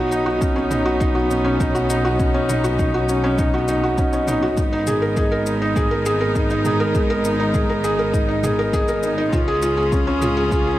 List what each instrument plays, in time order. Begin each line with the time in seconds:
Already playing: double bass section B1, string quartet B3 C#4 D#4, felt piano F#4
0.11 felt piano D#4, shaker
0.26 felt piano F#4
0.41 felt piano C#4, kick, shaker
0.56 felt piano C#4
0.71 felt piano D#4, mid tom, shaker
0.85 felt piano F#4
1.00 felt piano D#4, kick, shaker
1.15 felt piano F#4
1.30 felt piano C#4, shaker
1.44 felt piano C#4
1.60 felt piano D#4, kick, mid tom, shaker
1.75 felt piano F#4, shaker
1.90 felt piano D#4, shaker
2.05 felt piano F#4
2.19 felt piano C#4, kick, shaker
2.34 felt piano C#4
2.49 felt piano D#4, mid tom, shaker
2.64 felt piano F#4, shaker
2.79 felt piano D#4, kick, shaker
2.94 felt piano F#4
3.09 felt piano C#4, shaker
3.24 felt piano C#4
3.38 felt piano D#4, kick, mid tom, shaker
3.54 felt piano F#4
3.68 felt piano D#4, shaker
3.83 felt piano F#4
3.98 felt piano C#4, kick, shaker
4.13 felt piano C#4, shaker
4.28 felt piano D#4, mid tom, shaker
4.42 felt piano F#4
4.57 double bass section G#1, string quartet G#3 B3 D#4 A#4, felt piano D#4, kick, shaker
4.73 felt piano D#4
4.87 felt piano G#4, mid tom, shaker
5.02 felt piano A#4
5.17 felt piano G#4, kick, shaker
5.32 felt piano A#4
5.46 felt piano D#4, shaker
5.62 felt piano D#4
5.76 felt piano G#4, kick, mid tom, shaker
5.91 felt piano A#4
6.06 felt piano G#4, shaker
6.21 felt piano A#4
6.35 felt piano D#4, kick, shaker
6.50 felt piano D#4, shaker
6.65 felt piano G#4, mid tom, shaker
6.80 felt piano A#4
6.95 felt piano G#4, kick, shaker
7.10 felt piano A#4
7.25 felt piano D#4, shaker
7.40 felt piano D#4
7.54 felt piano G#4, kick, mid tom, shaker
7.69 felt piano A#4
7.84 felt piano G#4, shaker
7.99 felt piano A#4
8.14 felt piano D#4, kick, shaker
8.29 felt piano D#4
8.44 felt piano G#4, mid tom, shaker
8.59 felt piano A#4
8.73 felt piano G#4, kick, shaker
8.88 felt piano A#4, shaker
9.03 felt piano D#4, shaker
9.18 felt piano D#4
9.32 double bass section C#2, string quartet C#3 C#4 F4 G#4, felt piano F4, kick, mid tom, shaker
9.48 felt piano G#4
9.62 felt piano F4, shaker
9.77 felt piano G#4
9.92 felt piano C#4, kick, shaker
10.07 felt piano C#4
10.22 felt piano F4, mid tom, shaker
10.37 felt piano G#4
10.51 felt piano F4, kick, shaker
10.67 felt piano G#4